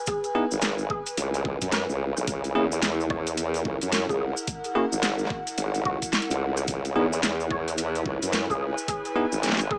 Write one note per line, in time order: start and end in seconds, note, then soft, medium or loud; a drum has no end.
0.00 2.27 B4 medium
0.00 3.02 G#5 medium
0.06 0.28 G#4 medium
0.06 kick loud
0.06 closed hi-hat medium
0.06 cabasa medium
0.24 closed hi-hat soft
0.24 cabasa soft
0.35 0.44 B3 loud
0.35 0.44 D#4 medium
0.35 0.44 E4 medium
0.35 0.44 G#4 loud
0.51 0.88 G#1 loud
0.51 cabasa medium
0.62 snare loud
0.62 closed hi-hat medium
0.62 cabasa medium
0.78 cabasa soft
0.90 1.10 G#4 medium
0.90 kick loud
1.06 closed hi-hat medium
1.06 cabasa medium
1.17 1.59 C#2 medium
1.17 closed hi-hat medium
1.17 cabasa medium
1.34 closed hi-hat soft
1.34 cabasa soft
1.45 kick loud
1.61 1.87 F#2 loud
1.61 kick medium
1.61 closed hi-hat medium
1.61 cabasa medium
1.72 2.28 B4 medium
1.72 snare loud
1.72 closed hi-hat medium
1.72 cabasa medium
1.89 2.14 C#2 loud
1.89 cabasa soft
2.17 2.26 B1 loud
2.17 cross-stick soft
2.17 cabasa medium
2.27 2.53 C#2 loud
2.27 9.78 E4 medium
2.27 kick loud
2.27 closed hi-hat medium
2.27 cabasa medium
2.44 closed hi-hat soft
2.44 cabasa soft
2.55 2.81 E2 loud
2.55 2.64 A#3 loud
2.55 2.64 C#4 medium
2.55 2.64 E4 medium
2.55 2.64 G#4 loud
2.72 cabasa medium
2.82 3.64 E2 medium
2.82 snare loud
2.82 closed hi-hat medium
2.82 cabasa medium
2.91 6.68 A#4 medium
3.00 cabasa soft
3.10 3.30 C#5 medium
3.10 kick loud
3.10 cross-stick soft
3.27 closed hi-hat medium
3.27 cabasa medium
3.37 closed hi-hat medium
3.37 cabasa medium
3.54 closed hi-hat soft
3.54 cabasa soft
3.65 3.79 C#2 loud
3.65 kick loud
3.79 4.07 F#2 loud
3.79 7.54 F#5 loud
3.79 closed hi-hat medium
3.79 cabasa medium
3.92 snare loud
3.92 closed hi-hat medium
3.92 cabasa medium
4.09 4.34 C#2 loud
4.09 4.16 G#4 medium
4.09 kick medium
4.09 cabasa soft
4.20 4.31 G#4 medium
4.37 cabasa medium
4.47 kick loud
4.47 closed hi-hat medium
4.47 cabasa medium
4.64 closed hi-hat soft
4.64 cabasa soft
4.75 4.84 A#3 loud
4.75 4.84 C#4 medium
4.75 4.84 E4 medium
4.75 4.96 F#4 medium
4.75 4.84 G#4 loud
4.92 5.29 G#1 loud
4.92 cabasa medium
5.03 snare loud
5.03 closed hi-hat medium
5.03 cabasa medium
5.19 cabasa soft
5.25 snare soft
5.30 kick loud
5.47 closed hi-hat medium
5.47 cabasa medium
5.58 5.84 G#1 loud
5.58 closed hi-hat medium
5.58 cabasa medium
5.74 closed hi-hat soft
5.74 cabasa soft
5.85 5.99 C#2 loud
5.85 6.40 F#4 medium
5.85 kick loud
6.02 kick medium
6.02 closed hi-hat medium
6.02 cabasa medium
6.13 snare loud
6.13 closed hi-hat soft
6.13 cabasa medium
6.22 closed hi-hat soft
6.30 6.66 C#2 loud
6.30 closed hi-hat medium
6.30 cabasa soft
6.57 cross-stick soft
6.57 cabasa medium
6.68 6.94 C#2 loud
6.68 kick loud
6.68 closed hi-hat medium
6.68 cabasa medium
6.85 closed hi-hat soft
6.85 cabasa soft
6.93 7.21 E2 loud
6.93 7.05 B3 loud
6.93 7.05 D#4 medium
6.93 7.05 E4 medium
6.93 7.05 G#4 loud
6.93 9.78 C#5 medium
7.13 cabasa medium
7.23 8.04 E2 loud
7.23 snare loud
7.23 closed hi-hat medium
7.23 cabasa medium
7.35 9.78 B4 medium
7.40 cabasa soft
7.51 7.71 C#5 medium
7.51 kick loud
7.59 cross-stick soft
7.68 cross-stick soft
7.68 closed hi-hat medium
7.68 cabasa medium
7.73 cross-stick soft
7.78 closed hi-hat medium
7.78 cabasa medium
7.95 closed hi-hat soft
7.95 cabasa soft
8.06 8.20 C#2 loud
8.06 kick loud
8.22 8.47 F#2 loud
8.22 9.78 G#5 medium
8.22 closed hi-hat medium
8.22 cabasa medium
8.33 snare loud
8.33 closed hi-hat medium
8.33 cabasa medium
8.50 8.75 C#2 loud
8.50 8.57 G#4 medium
8.50 kick medium
8.50 cabasa soft
8.61 8.71 G#4 medium
8.78 cabasa medium
8.88 9.08 G#4 loud
8.88 kick loud
8.88 closed hi-hat medium
8.88 cabasa medium
9.05 closed hi-hat soft
9.05 cabasa soft
9.16 9.25 B3 loud
9.16 9.25 D#4 medium
9.16 9.25 E4 medium
9.16 9.25 G#4 loud
9.32 9.69 G#1 loud
9.32 cabasa medium
9.43 snare medium
9.43 closed hi-hat medium
9.43 cabasa medium
9.46 snare medium
9.49 snare medium
9.52 snare medium
9.57 snare loud
9.57 cabasa soft
9.70 9.78 G#4 medium
9.70 kick loud
9.70 cross-stick soft